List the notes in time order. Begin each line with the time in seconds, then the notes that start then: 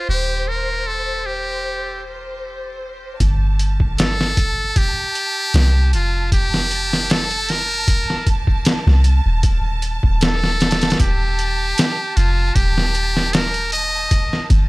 Already playing: C5
0.09 D#1 G4
0.48 A#4
0.87 A4
1.26 G4
3.20 G1 A5, kick, closed hi-hat
3.59 closed hi-hat
3.80 kick
3.98 A4, snare, closed hi-hat
4.21 snare
4.37 kick, closed hi-hat
4.76 G4, kick, closed hi-hat
5.15 closed hi-hat
5.54 C2, snare, closed hi-hat
5.93 F1 F4, closed hi-hat
6.32 G4, kick, closed hi-hat
6.54 snare
6.71 closed hi-hat
6.93 snare
7.10 A4, snare, closed hi-hat
7.31 closed hi-hat
7.49 A#4, snare, closed hi-hat
7.88 kick, closed hi-hat
8.10 snare
8.27 kick, closed hi-hat
8.47 kick
8.65 snare, closed hi-hat
8.87 C2, snare
9.04 closed hi-hat
9.26 D#1
9.43 kick, closed hi-hat
9.82 closed hi-hat
10.03 D#1, kick
10.21 A4, snare, closed hi-hat
10.44 snare
10.60 snare, closed hi-hat
10.71 snare, closed hi-hat
10.81 snare, closed hi-hat
10.90 snare, closed hi-hat
11.00 D#1 G4, kick, closed hi-hat
11.39 closed hi-hat
11.78 snare, closed hi-hat
12.16 F1 F4, closed hi-hat
12.55 D#1 G4, kick, closed hi-hat
12.78 snare
12.95 closed hi-hat
13.17 snare
13.33 A#4, snare, closed hi-hat
13.54 closed hi-hat
13.72 D#5, closed hi-hat
14.11 kick, closed hi-hat
14.33 snare
14.50 G1, kick, closed hi-hat